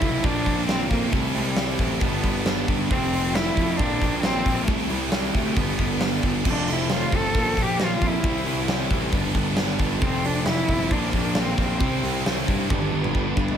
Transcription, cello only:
0.00 0.25 E4 loud
0.24 0.67 D4 loud
0.67 0.89 C4 loud
0.89 1.12 A#3 medium
1.11 1.33 A3 loud
1.33 1.80 G3 loud
1.78 2.02 A3 medium
2.00 2.68 B3 medium
2.90 3.36 C4 loud
3.35 3.75 E4 loud
3.73 3.78 C4 medium
3.73 4.21 D4 loud
4.21 4.67 C4 loud
4.65 4.90 A3 loud
4.88 5.34 G3 medium
5.32 5.57 A3 medium
5.56 6.23 B3 medium
6.48 6.74 D4 loud
6.72 6.93 E4 medium
6.94 7.18 F4 loud
7.16 7.63 A4 loud
7.62 7.86 G4 loud
7.84 8.08 F4 loud
8.07 8.93 E4 loud
10.03 10.27 C4 loud
10.25 10.47 D4 loud
10.47 10.93 E4 loud
10.92 11.14 D4 loud
11.16 11.41 D4 medium
11.39 11.59 C4 loud
11.60 12.45 C4 medium

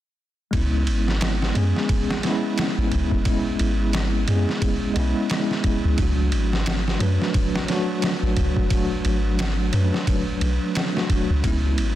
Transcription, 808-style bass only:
0.53 0.89 C#2 medium
0.88 1.53 G#1 medium
1.56 1.73 F#2 medium
2.78 2.90 G#1 medium
2.92 3.09 C#2 medium
3.60 4.25 G#1 medium
4.28 4.46 F#2 medium
4.96 5.14 B1 medium
5.85 5.97 C#2 medium
5.98 6.34 C#2 medium
6.33 6.98 G#1 medium
7.00 7.18 F#2 medium
8.23 8.35 G#1 medium
8.37 8.55 C#2 medium
9.05 9.71 G#1 medium
9.74 9.91 F#2 medium
10.41 10.59 B1 medium
11.30 11.42 C#2 medium
11.44 11.80 C#2 medium
11.78 11.95 G#1 medium

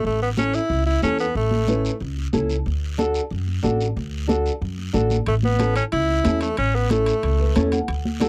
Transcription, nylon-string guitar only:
0.37 0.60 C#4 medium
0.37 0.60 E4 medium
0.37 0.61 A4 medium
1.03 1.26 C#4 medium
1.03 1.26 E4 medium
1.03 1.26 A4 medium
1.68 1.91 C#4 medium
1.68 1.91 E4 medium
1.68 1.91 B4 medium
2.33 2.56 C#4 medium
2.33 2.56 E4 medium
2.33 2.56 A4 medium
2.98 3.21 D4 medium
2.98 3.21 F#4 medium
2.98 3.22 A4 medium
3.63 3.86 D4 medium
3.63 3.87 F#4 medium
3.63 3.87 A4 medium
4.28 4.51 D4 medium
4.28 4.52 F#4 medium
4.28 4.52 A4 medium
4.93 5.17 D4 medium
4.93 5.17 F#4 medium
4.93 5.17 A4 medium
5.58 5.82 C#4 medium
5.58 5.83 E4 medium
5.58 5.82 A4 medium
6.24 6.47 C#4 medium
6.24 6.48 E4 medium
6.24 6.48 A4 medium
6.90 7.13 C#4 medium
6.90 7.13 E4 medium
6.90 7.14 A4 medium
7.40 7.55 B4 medium
7.55 7.79 C#4 medium
7.55 7.79 E4 medium
7.55 7.79 A4 medium
7.55 7.71 C#5 medium
7.72 7.87 F#5 medium
8.20 8.29 D4 medium
8.20 8.29 F#4 medium
8.20 8.29 A4 medium

